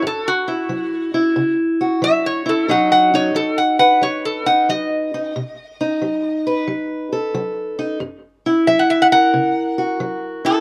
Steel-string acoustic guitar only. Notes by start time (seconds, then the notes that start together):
Already playing: F#4
0.02 F#2
0.48 E4
0.69 F#3
1.14 E4
1.36 C#3
1.81 F#4
2.02 F#3
2.46 E4
2.68 B2 F#3 D#4
3.14 D#4
3.35 F#3
3.79 B4
4.01 F#3
4.46 D#4
4.69 F#3
5.14 D#4
5.36 B2
5.81 D#4
6.02 F#3
6.47 B4
6.67 F#3
7.13 A4
7.34 F#3
7.79 D#4
8.00 F#2
8.46 E4
8.67 F#3
9.12 A#4
9.34 C#3
9.78 F#4
10.00 F#3
10.45 E4